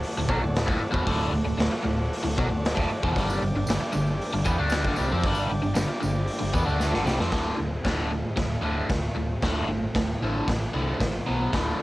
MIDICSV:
0, 0, Header, 1, 7, 480
1, 0, Start_track
1, 0, Tempo, 521286
1, 983, Time_signature, 4, 2, 24, 8
1, 5785, Tempo, 525855
1, 10844, End_track
2, 0, Start_track
2, 0, Title_t, "Transistor combo organ"
2, 0, Program_c, 0, 18
2, 0, Note_on_c, 0, 66, 79
2, 0, Note_on_c, 0, 69, 66
2, 0, Note_on_c, 0, 74, 82
2, 2870, Note_off_c, 0, 74, 0
2, 2871, Note_off_c, 0, 66, 0
2, 2875, Note_off_c, 0, 69, 0
2, 2934, Note_on_c, 0, 74, 82
2, 2935, Note_on_c, 0, 62, 80
2, 2945, Note_on_c, 0, 67, 69
2, 6722, Note_off_c, 0, 62, 0
2, 6722, Note_off_c, 0, 74, 0
2, 6727, Note_off_c, 0, 67, 0
2, 10844, End_track
3, 0, Start_track
3, 0, Title_t, "Overdriven electric guitar"
3, 0, Program_c, 1, 29
3, 164, Note_on_c, 1, 38, 66
3, 179, Note_on_c, 1, 45, 71
3, 266, Note_off_c, 1, 38, 0
3, 270, Note_on_c, 1, 47, 89
3, 273, Note_off_c, 1, 45, 0
3, 277, Note_on_c, 1, 54, 96
3, 380, Note_off_c, 1, 47, 0
3, 384, Note_off_c, 1, 54, 0
3, 398, Note_on_c, 1, 38, 64
3, 400, Note_on_c, 1, 45, 72
3, 583, Note_off_c, 1, 38, 0
3, 584, Note_off_c, 1, 45, 0
3, 611, Note_on_c, 1, 38, 85
3, 628, Note_on_c, 1, 45, 103
3, 723, Note_off_c, 1, 38, 0
3, 739, Note_off_c, 1, 45, 0
3, 839, Note_on_c, 1, 40, 102
3, 859, Note_on_c, 1, 47, 99
3, 964, Note_off_c, 1, 40, 0
3, 974, Note_off_c, 1, 47, 0
3, 975, Note_on_c, 1, 38, 100
3, 984, Note_on_c, 1, 45, 98
3, 993, Note_on_c, 1, 50, 106
3, 1207, Note_off_c, 1, 38, 0
3, 1213, Note_off_c, 1, 45, 0
3, 1218, Note_on_c, 1, 38, 68
3, 1220, Note_off_c, 1, 50, 0
3, 1224, Note_on_c, 1, 45, 84
3, 1321, Note_off_c, 1, 38, 0
3, 1329, Note_off_c, 1, 45, 0
3, 1332, Note_on_c, 1, 38, 61
3, 1340, Note_on_c, 1, 45, 79
3, 1444, Note_off_c, 1, 38, 0
3, 1455, Note_off_c, 1, 45, 0
3, 1455, Note_on_c, 1, 38, 76
3, 1466, Note_on_c, 1, 45, 81
3, 1579, Note_off_c, 1, 38, 0
3, 1584, Note_off_c, 1, 45, 0
3, 1692, Note_on_c, 1, 38, 65
3, 1705, Note_on_c, 1, 45, 76
3, 1889, Note_off_c, 1, 38, 0
3, 1895, Note_off_c, 1, 45, 0
3, 2054, Note_on_c, 1, 38, 64
3, 2060, Note_on_c, 1, 45, 75
3, 2178, Note_off_c, 1, 38, 0
3, 2180, Note_off_c, 1, 45, 0
3, 2182, Note_on_c, 1, 47, 98
3, 2183, Note_on_c, 1, 54, 99
3, 2283, Note_off_c, 1, 47, 0
3, 2285, Note_off_c, 1, 54, 0
3, 2287, Note_on_c, 1, 38, 71
3, 2289, Note_on_c, 1, 45, 77
3, 2486, Note_off_c, 1, 38, 0
3, 2487, Note_off_c, 1, 45, 0
3, 2535, Note_on_c, 1, 38, 82
3, 2549, Note_on_c, 1, 45, 98
3, 2651, Note_off_c, 1, 38, 0
3, 2658, Note_off_c, 1, 45, 0
3, 2791, Note_on_c, 1, 40, 87
3, 2802, Note_on_c, 1, 47, 108
3, 2899, Note_off_c, 1, 40, 0
3, 2904, Note_off_c, 1, 47, 0
3, 2921, Note_on_c, 1, 43, 99
3, 2925, Note_on_c, 1, 50, 94
3, 2935, Note_on_c, 1, 55, 104
3, 3144, Note_off_c, 1, 43, 0
3, 3146, Note_off_c, 1, 50, 0
3, 3151, Note_off_c, 1, 55, 0
3, 3157, Note_on_c, 1, 43, 75
3, 3158, Note_on_c, 1, 50, 75
3, 3266, Note_off_c, 1, 50, 0
3, 3269, Note_off_c, 1, 43, 0
3, 3277, Note_on_c, 1, 50, 77
3, 3283, Note_on_c, 1, 43, 67
3, 3385, Note_off_c, 1, 43, 0
3, 3385, Note_off_c, 1, 50, 0
3, 3396, Note_on_c, 1, 43, 69
3, 3396, Note_on_c, 1, 50, 75
3, 3495, Note_off_c, 1, 43, 0
3, 3509, Note_off_c, 1, 50, 0
3, 3613, Note_on_c, 1, 43, 59
3, 3620, Note_on_c, 1, 50, 75
3, 3809, Note_off_c, 1, 43, 0
3, 3813, Note_off_c, 1, 50, 0
3, 3986, Note_on_c, 1, 50, 74
3, 3990, Note_on_c, 1, 43, 67
3, 4090, Note_off_c, 1, 50, 0
3, 4093, Note_on_c, 1, 52, 97
3, 4106, Note_off_c, 1, 43, 0
3, 4111, Note_on_c, 1, 59, 106
3, 4211, Note_off_c, 1, 52, 0
3, 4217, Note_off_c, 1, 59, 0
3, 4221, Note_on_c, 1, 50, 89
3, 4221, Note_on_c, 1, 57, 94
3, 4230, Note_on_c, 1, 62, 113
3, 4454, Note_off_c, 1, 50, 0
3, 4454, Note_off_c, 1, 57, 0
3, 4459, Note_off_c, 1, 62, 0
3, 4479, Note_on_c, 1, 43, 75
3, 4486, Note_on_c, 1, 50, 92
3, 4574, Note_off_c, 1, 43, 0
3, 4578, Note_on_c, 1, 48, 91
3, 4582, Note_off_c, 1, 50, 0
3, 4585, Note_on_c, 1, 55, 94
3, 4693, Note_off_c, 1, 48, 0
3, 4697, Note_off_c, 1, 55, 0
3, 4710, Note_on_c, 1, 53, 97
3, 4717, Note_on_c, 1, 60, 110
3, 4819, Note_off_c, 1, 53, 0
3, 4823, Note_off_c, 1, 60, 0
3, 4828, Note_on_c, 1, 43, 98
3, 4849, Note_on_c, 1, 50, 101
3, 4849, Note_on_c, 1, 55, 105
3, 5059, Note_off_c, 1, 43, 0
3, 5061, Note_off_c, 1, 50, 0
3, 5069, Note_off_c, 1, 55, 0
3, 5072, Note_on_c, 1, 50, 80
3, 5074, Note_on_c, 1, 43, 64
3, 5163, Note_off_c, 1, 43, 0
3, 5167, Note_off_c, 1, 50, 0
3, 5174, Note_on_c, 1, 43, 74
3, 5178, Note_on_c, 1, 50, 67
3, 5273, Note_off_c, 1, 43, 0
3, 5281, Note_off_c, 1, 50, 0
3, 5284, Note_on_c, 1, 43, 71
3, 5292, Note_on_c, 1, 50, 77
3, 5408, Note_off_c, 1, 43, 0
3, 5418, Note_off_c, 1, 50, 0
3, 5529, Note_on_c, 1, 43, 72
3, 5539, Note_on_c, 1, 50, 70
3, 5730, Note_off_c, 1, 43, 0
3, 5735, Note_off_c, 1, 50, 0
3, 5886, Note_on_c, 1, 50, 74
3, 5889, Note_on_c, 1, 43, 64
3, 6008, Note_off_c, 1, 50, 0
3, 6011, Note_on_c, 1, 52, 88
3, 6016, Note_off_c, 1, 43, 0
3, 6022, Note_on_c, 1, 59, 92
3, 6118, Note_off_c, 1, 52, 0
3, 6121, Note_on_c, 1, 50, 97
3, 6130, Note_off_c, 1, 59, 0
3, 6134, Note_on_c, 1, 57, 87
3, 6142, Note_on_c, 1, 62, 104
3, 6365, Note_off_c, 1, 50, 0
3, 6366, Note_on_c, 1, 43, 83
3, 6371, Note_off_c, 1, 57, 0
3, 6374, Note_on_c, 1, 50, 90
3, 6375, Note_off_c, 1, 62, 0
3, 6480, Note_off_c, 1, 43, 0
3, 6484, Note_on_c, 1, 48, 95
3, 6491, Note_off_c, 1, 50, 0
3, 6500, Note_on_c, 1, 55, 99
3, 6606, Note_off_c, 1, 48, 0
3, 6614, Note_off_c, 1, 55, 0
3, 6623, Note_on_c, 1, 53, 93
3, 6629, Note_on_c, 1, 60, 96
3, 6722, Note_off_c, 1, 53, 0
3, 6725, Note_on_c, 1, 45, 80
3, 6726, Note_on_c, 1, 38, 81
3, 6736, Note_off_c, 1, 60, 0
3, 6740, Note_on_c, 1, 50, 76
3, 6949, Note_off_c, 1, 45, 0
3, 6951, Note_off_c, 1, 38, 0
3, 6960, Note_on_c, 1, 45, 75
3, 6962, Note_on_c, 1, 38, 69
3, 6966, Note_off_c, 1, 50, 0
3, 7187, Note_off_c, 1, 45, 0
3, 7188, Note_off_c, 1, 38, 0
3, 7210, Note_on_c, 1, 38, 77
3, 7216, Note_on_c, 1, 45, 87
3, 7221, Note_on_c, 1, 50, 101
3, 7442, Note_off_c, 1, 38, 0
3, 7442, Note_off_c, 1, 45, 0
3, 7447, Note_off_c, 1, 50, 0
3, 7452, Note_on_c, 1, 38, 59
3, 7453, Note_on_c, 1, 45, 75
3, 7673, Note_off_c, 1, 38, 0
3, 7674, Note_off_c, 1, 45, 0
3, 7682, Note_on_c, 1, 38, 66
3, 7688, Note_on_c, 1, 45, 81
3, 7902, Note_off_c, 1, 38, 0
3, 7911, Note_off_c, 1, 45, 0
3, 7913, Note_on_c, 1, 38, 90
3, 7927, Note_on_c, 1, 45, 87
3, 7932, Note_on_c, 1, 50, 90
3, 8153, Note_off_c, 1, 38, 0
3, 8155, Note_off_c, 1, 45, 0
3, 8163, Note_off_c, 1, 50, 0
3, 8166, Note_on_c, 1, 45, 82
3, 8174, Note_on_c, 1, 38, 77
3, 8391, Note_off_c, 1, 38, 0
3, 8391, Note_off_c, 1, 45, 0
3, 8402, Note_on_c, 1, 38, 66
3, 8411, Note_on_c, 1, 45, 72
3, 8629, Note_off_c, 1, 38, 0
3, 8633, Note_off_c, 1, 45, 0
3, 8653, Note_on_c, 1, 38, 81
3, 8666, Note_on_c, 1, 45, 87
3, 8671, Note_on_c, 1, 50, 88
3, 8877, Note_off_c, 1, 45, 0
3, 8879, Note_off_c, 1, 38, 0
3, 8888, Note_on_c, 1, 45, 75
3, 8890, Note_on_c, 1, 38, 65
3, 8893, Note_off_c, 1, 50, 0
3, 9112, Note_off_c, 1, 45, 0
3, 9113, Note_off_c, 1, 38, 0
3, 9141, Note_on_c, 1, 38, 66
3, 9145, Note_on_c, 1, 45, 82
3, 9359, Note_off_c, 1, 38, 0
3, 9361, Note_off_c, 1, 45, 0
3, 9383, Note_on_c, 1, 38, 86
3, 9389, Note_on_c, 1, 45, 88
3, 9392, Note_on_c, 1, 50, 100
3, 9602, Note_off_c, 1, 45, 0
3, 9604, Note_off_c, 1, 38, 0
3, 9613, Note_on_c, 1, 45, 77
3, 9614, Note_off_c, 1, 50, 0
3, 9615, Note_on_c, 1, 38, 73
3, 9835, Note_off_c, 1, 45, 0
3, 9836, Note_off_c, 1, 38, 0
3, 9849, Note_on_c, 1, 38, 81
3, 9851, Note_on_c, 1, 45, 87
3, 9856, Note_on_c, 1, 50, 86
3, 10078, Note_off_c, 1, 38, 0
3, 10084, Note_off_c, 1, 45, 0
3, 10086, Note_off_c, 1, 50, 0
3, 10089, Note_on_c, 1, 38, 74
3, 10095, Note_on_c, 1, 45, 76
3, 10314, Note_off_c, 1, 38, 0
3, 10317, Note_off_c, 1, 45, 0
3, 10331, Note_on_c, 1, 47, 80
3, 10334, Note_on_c, 1, 54, 81
3, 10342, Note_on_c, 1, 59, 88
3, 10558, Note_off_c, 1, 47, 0
3, 10562, Note_on_c, 1, 38, 77
3, 10566, Note_off_c, 1, 54, 0
3, 10570, Note_off_c, 1, 59, 0
3, 10573, Note_on_c, 1, 45, 86
3, 10574, Note_on_c, 1, 50, 94
3, 10800, Note_off_c, 1, 38, 0
3, 10806, Note_off_c, 1, 45, 0
3, 10806, Note_off_c, 1, 50, 0
3, 10815, Note_on_c, 1, 38, 71
3, 10844, Note_off_c, 1, 38, 0
3, 10844, End_track
4, 0, Start_track
4, 0, Title_t, "Fingered electric bass"
4, 0, Program_c, 2, 33
4, 161, Note_on_c, 2, 26, 76
4, 259, Note_off_c, 2, 26, 0
4, 265, Note_on_c, 2, 35, 98
4, 376, Note_off_c, 2, 35, 0
4, 400, Note_on_c, 2, 26, 82
4, 616, Note_off_c, 2, 26, 0
4, 634, Note_on_c, 2, 26, 97
4, 741, Note_off_c, 2, 26, 0
4, 861, Note_on_c, 2, 28, 103
4, 974, Note_off_c, 2, 28, 0
4, 982, Note_on_c, 2, 26, 105
4, 1202, Note_off_c, 2, 26, 0
4, 1207, Note_on_c, 2, 26, 78
4, 1326, Note_off_c, 2, 26, 0
4, 1330, Note_on_c, 2, 26, 80
4, 1445, Note_off_c, 2, 26, 0
4, 1450, Note_on_c, 2, 26, 81
4, 1568, Note_off_c, 2, 26, 0
4, 1701, Note_on_c, 2, 26, 92
4, 1925, Note_off_c, 2, 26, 0
4, 2063, Note_on_c, 2, 26, 86
4, 2174, Note_off_c, 2, 26, 0
4, 2192, Note_on_c, 2, 35, 102
4, 2284, Note_off_c, 2, 35, 0
4, 2289, Note_on_c, 2, 26, 85
4, 2518, Note_off_c, 2, 26, 0
4, 2548, Note_on_c, 2, 26, 96
4, 2657, Note_off_c, 2, 26, 0
4, 2794, Note_on_c, 2, 28, 93
4, 2900, Note_off_c, 2, 28, 0
4, 2913, Note_on_c, 2, 31, 101
4, 3131, Note_off_c, 2, 31, 0
4, 3146, Note_on_c, 2, 31, 74
4, 3256, Note_off_c, 2, 31, 0
4, 3266, Note_on_c, 2, 31, 82
4, 3375, Note_off_c, 2, 31, 0
4, 3384, Note_on_c, 2, 31, 76
4, 3495, Note_off_c, 2, 31, 0
4, 3633, Note_on_c, 2, 31, 86
4, 3851, Note_off_c, 2, 31, 0
4, 3990, Note_on_c, 2, 31, 77
4, 4098, Note_off_c, 2, 31, 0
4, 4105, Note_on_c, 2, 40, 109
4, 4216, Note_off_c, 2, 40, 0
4, 4234, Note_on_c, 2, 38, 100
4, 4452, Note_off_c, 2, 38, 0
4, 4465, Note_on_c, 2, 31, 96
4, 4576, Note_off_c, 2, 31, 0
4, 4597, Note_on_c, 2, 36, 98
4, 4702, Note_off_c, 2, 36, 0
4, 4715, Note_on_c, 2, 41, 97
4, 4811, Note_off_c, 2, 41, 0
4, 4816, Note_on_c, 2, 31, 100
4, 5043, Note_off_c, 2, 31, 0
4, 5073, Note_on_c, 2, 31, 73
4, 5178, Note_off_c, 2, 31, 0
4, 5184, Note_on_c, 2, 31, 71
4, 5296, Note_off_c, 2, 31, 0
4, 5308, Note_on_c, 2, 31, 76
4, 5418, Note_off_c, 2, 31, 0
4, 5555, Note_on_c, 2, 31, 92
4, 5774, Note_off_c, 2, 31, 0
4, 5909, Note_on_c, 2, 31, 83
4, 6008, Note_off_c, 2, 31, 0
4, 6014, Note_on_c, 2, 40, 97
4, 6130, Note_off_c, 2, 40, 0
4, 6145, Note_on_c, 2, 38, 93
4, 6367, Note_off_c, 2, 38, 0
4, 6388, Note_on_c, 2, 31, 92
4, 6490, Note_off_c, 2, 31, 0
4, 6495, Note_on_c, 2, 36, 90
4, 6610, Note_off_c, 2, 36, 0
4, 6614, Note_on_c, 2, 41, 95
4, 6723, Note_off_c, 2, 41, 0
4, 6728, Note_on_c, 2, 26, 91
4, 6896, Note_off_c, 2, 26, 0
4, 6982, Note_on_c, 2, 26, 69
4, 7145, Note_off_c, 2, 26, 0
4, 7221, Note_on_c, 2, 26, 82
4, 7548, Note_off_c, 2, 26, 0
4, 7685, Note_on_c, 2, 26, 95
4, 7854, Note_off_c, 2, 26, 0
4, 7917, Note_on_c, 2, 26, 85
4, 8089, Note_off_c, 2, 26, 0
4, 8162, Note_on_c, 2, 26, 88
4, 8333, Note_off_c, 2, 26, 0
4, 8407, Note_on_c, 2, 26, 81
4, 8576, Note_off_c, 2, 26, 0
4, 8657, Note_on_c, 2, 26, 95
4, 8823, Note_off_c, 2, 26, 0
4, 8876, Note_on_c, 2, 31, 76
4, 9049, Note_off_c, 2, 31, 0
4, 9141, Note_on_c, 2, 26, 80
4, 9306, Note_off_c, 2, 26, 0
4, 9380, Note_on_c, 2, 33, 91
4, 9545, Note_off_c, 2, 33, 0
4, 9613, Note_on_c, 2, 33, 92
4, 9781, Note_off_c, 2, 33, 0
4, 9855, Note_on_c, 2, 36, 88
4, 10022, Note_off_c, 2, 36, 0
4, 10087, Note_on_c, 2, 33, 80
4, 10257, Note_off_c, 2, 33, 0
4, 10352, Note_on_c, 2, 35, 88
4, 10513, Note_off_c, 2, 35, 0
4, 10576, Note_on_c, 2, 26, 95
4, 10743, Note_off_c, 2, 26, 0
4, 10844, End_track
5, 0, Start_track
5, 0, Title_t, "Muted fingered electric bass strokes"
5, 752, Note_on_c, 9, 29, 44
5, 844, Note_off_c, 9, 29, 0
5, 10844, End_track
6, 0, Start_track
6, 0, Title_t, "Muted overdriven electric guitar strokes"
6, 734, Note_on_c, 9, 29, 59
6, 826, Note_off_c, 9, 29, 0
6, 1591, Note_on_c, 9, 29, 66
6, 1683, Note_off_c, 9, 29, 0
6, 2663, Note_on_c, 9, 29, 62
6, 2755, Note_off_c, 9, 29, 0
6, 3506, Note_on_c, 9, 29, 62
6, 3598, Note_off_c, 9, 29, 0
6, 5419, Note_on_c, 9, 29, 59
6, 5511, Note_off_c, 9, 29, 0
6, 10844, End_track
7, 0, Start_track
7, 0, Title_t, "Drums"
7, 29, Note_on_c, 9, 46, 59
7, 121, Note_off_c, 9, 46, 0
7, 264, Note_on_c, 9, 36, 106
7, 356, Note_off_c, 9, 36, 0
7, 511, Note_on_c, 9, 46, 68
7, 520, Note_on_c, 9, 38, 118
7, 603, Note_off_c, 9, 46, 0
7, 612, Note_off_c, 9, 38, 0
7, 624, Note_on_c, 9, 36, 114
7, 717, Note_off_c, 9, 36, 0
7, 863, Note_on_c, 9, 36, 104
7, 955, Note_off_c, 9, 36, 0
7, 981, Note_on_c, 9, 46, 71
7, 983, Note_on_c, 9, 36, 107
7, 1073, Note_off_c, 9, 46, 0
7, 1075, Note_off_c, 9, 36, 0
7, 1467, Note_on_c, 9, 46, 70
7, 1476, Note_on_c, 9, 38, 119
7, 1559, Note_off_c, 9, 46, 0
7, 1568, Note_off_c, 9, 38, 0
7, 1962, Note_on_c, 9, 46, 67
7, 2054, Note_off_c, 9, 46, 0
7, 2192, Note_on_c, 9, 36, 109
7, 2284, Note_off_c, 9, 36, 0
7, 2441, Note_on_c, 9, 46, 67
7, 2450, Note_on_c, 9, 38, 125
7, 2533, Note_off_c, 9, 46, 0
7, 2542, Note_off_c, 9, 38, 0
7, 2552, Note_on_c, 9, 36, 108
7, 2644, Note_off_c, 9, 36, 0
7, 2793, Note_on_c, 9, 36, 111
7, 2885, Note_off_c, 9, 36, 0
7, 2911, Note_on_c, 9, 36, 100
7, 2922, Note_on_c, 9, 46, 62
7, 2929, Note_on_c, 9, 54, 28
7, 3003, Note_off_c, 9, 36, 0
7, 3014, Note_off_c, 9, 46, 0
7, 3021, Note_off_c, 9, 54, 0
7, 3037, Note_on_c, 9, 54, 79
7, 3129, Note_off_c, 9, 54, 0
7, 3150, Note_on_c, 9, 54, 28
7, 3242, Note_off_c, 9, 54, 0
7, 3378, Note_on_c, 9, 54, 95
7, 3399, Note_on_c, 9, 46, 64
7, 3408, Note_on_c, 9, 38, 124
7, 3470, Note_off_c, 9, 54, 0
7, 3491, Note_off_c, 9, 46, 0
7, 3500, Note_off_c, 9, 38, 0
7, 3505, Note_on_c, 9, 54, 29
7, 3597, Note_off_c, 9, 54, 0
7, 3615, Note_on_c, 9, 54, 83
7, 3707, Note_off_c, 9, 54, 0
7, 3742, Note_on_c, 9, 54, 34
7, 3834, Note_off_c, 9, 54, 0
7, 3880, Note_on_c, 9, 46, 58
7, 3969, Note_on_c, 9, 54, 31
7, 3972, Note_off_c, 9, 46, 0
7, 4061, Note_off_c, 9, 54, 0
7, 4097, Note_on_c, 9, 54, 78
7, 4104, Note_on_c, 9, 36, 115
7, 4189, Note_off_c, 9, 54, 0
7, 4196, Note_off_c, 9, 36, 0
7, 4325, Note_on_c, 9, 54, 104
7, 4338, Note_on_c, 9, 46, 62
7, 4348, Note_on_c, 9, 38, 119
7, 4417, Note_off_c, 9, 54, 0
7, 4431, Note_off_c, 9, 46, 0
7, 4440, Note_off_c, 9, 38, 0
7, 4461, Note_on_c, 9, 36, 107
7, 4553, Note_off_c, 9, 36, 0
7, 4568, Note_on_c, 9, 54, 78
7, 4660, Note_off_c, 9, 54, 0
7, 4683, Note_on_c, 9, 54, 30
7, 4775, Note_off_c, 9, 54, 0
7, 4794, Note_on_c, 9, 54, 25
7, 4820, Note_on_c, 9, 36, 114
7, 4821, Note_on_c, 9, 46, 68
7, 4886, Note_off_c, 9, 54, 0
7, 4912, Note_off_c, 9, 36, 0
7, 4913, Note_off_c, 9, 46, 0
7, 4924, Note_on_c, 9, 54, 75
7, 5016, Note_off_c, 9, 54, 0
7, 5189, Note_on_c, 9, 54, 28
7, 5281, Note_off_c, 9, 54, 0
7, 5297, Note_on_c, 9, 54, 104
7, 5299, Note_on_c, 9, 46, 63
7, 5308, Note_on_c, 9, 38, 121
7, 5389, Note_off_c, 9, 54, 0
7, 5391, Note_off_c, 9, 46, 0
7, 5400, Note_off_c, 9, 38, 0
7, 5549, Note_on_c, 9, 54, 77
7, 5641, Note_off_c, 9, 54, 0
7, 5671, Note_on_c, 9, 54, 30
7, 5764, Note_off_c, 9, 54, 0
7, 5778, Note_on_c, 9, 46, 64
7, 5870, Note_off_c, 9, 46, 0
7, 5909, Note_on_c, 9, 54, 29
7, 6000, Note_off_c, 9, 54, 0
7, 6017, Note_on_c, 9, 36, 113
7, 6028, Note_on_c, 9, 54, 67
7, 6108, Note_off_c, 9, 36, 0
7, 6119, Note_off_c, 9, 54, 0
7, 6158, Note_on_c, 9, 54, 26
7, 6249, Note_off_c, 9, 54, 0
7, 6260, Note_on_c, 9, 38, 72
7, 6265, Note_on_c, 9, 54, 92
7, 6351, Note_off_c, 9, 38, 0
7, 6357, Note_off_c, 9, 54, 0
7, 6384, Note_on_c, 9, 38, 71
7, 6475, Note_off_c, 9, 38, 0
7, 6503, Note_on_c, 9, 54, 66
7, 6510, Note_on_c, 9, 38, 96
7, 6594, Note_off_c, 9, 54, 0
7, 6602, Note_off_c, 9, 38, 0
7, 6614, Note_on_c, 9, 54, 25
7, 6627, Note_on_c, 9, 38, 92
7, 6706, Note_off_c, 9, 54, 0
7, 6718, Note_off_c, 9, 38, 0
7, 6725, Note_on_c, 9, 46, 54
7, 6734, Note_on_c, 9, 36, 114
7, 6734, Note_on_c, 9, 38, 109
7, 6816, Note_off_c, 9, 46, 0
7, 6825, Note_off_c, 9, 36, 0
7, 6825, Note_off_c, 9, 38, 0
7, 7214, Note_on_c, 9, 36, 104
7, 7219, Note_on_c, 9, 46, 50
7, 7228, Note_on_c, 9, 38, 112
7, 7305, Note_off_c, 9, 36, 0
7, 7310, Note_off_c, 9, 46, 0
7, 7319, Note_off_c, 9, 38, 0
7, 7685, Note_on_c, 9, 46, 47
7, 7691, Note_on_c, 9, 36, 105
7, 7694, Note_on_c, 9, 38, 106
7, 7776, Note_off_c, 9, 46, 0
7, 7782, Note_off_c, 9, 36, 0
7, 7785, Note_off_c, 9, 38, 0
7, 8165, Note_on_c, 9, 46, 47
7, 8171, Note_on_c, 9, 36, 109
7, 8174, Note_on_c, 9, 38, 106
7, 8257, Note_off_c, 9, 46, 0
7, 8262, Note_off_c, 9, 36, 0
7, 8266, Note_off_c, 9, 38, 0
7, 8650, Note_on_c, 9, 46, 54
7, 8653, Note_on_c, 9, 36, 108
7, 8659, Note_on_c, 9, 38, 101
7, 8741, Note_off_c, 9, 46, 0
7, 8744, Note_off_c, 9, 36, 0
7, 8750, Note_off_c, 9, 38, 0
7, 9131, Note_on_c, 9, 46, 56
7, 9132, Note_on_c, 9, 36, 102
7, 9140, Note_on_c, 9, 38, 108
7, 9222, Note_off_c, 9, 46, 0
7, 9224, Note_off_c, 9, 36, 0
7, 9231, Note_off_c, 9, 38, 0
7, 9615, Note_on_c, 9, 36, 100
7, 9621, Note_on_c, 9, 46, 55
7, 9630, Note_on_c, 9, 38, 107
7, 9707, Note_off_c, 9, 36, 0
7, 9712, Note_off_c, 9, 46, 0
7, 9721, Note_off_c, 9, 38, 0
7, 10094, Note_on_c, 9, 46, 59
7, 10096, Note_on_c, 9, 36, 107
7, 10103, Note_on_c, 9, 38, 108
7, 10186, Note_off_c, 9, 46, 0
7, 10187, Note_off_c, 9, 36, 0
7, 10195, Note_off_c, 9, 38, 0
7, 10575, Note_on_c, 9, 46, 55
7, 10577, Note_on_c, 9, 36, 111
7, 10585, Note_on_c, 9, 38, 112
7, 10667, Note_off_c, 9, 46, 0
7, 10668, Note_off_c, 9, 36, 0
7, 10676, Note_off_c, 9, 38, 0
7, 10844, End_track
0, 0, End_of_file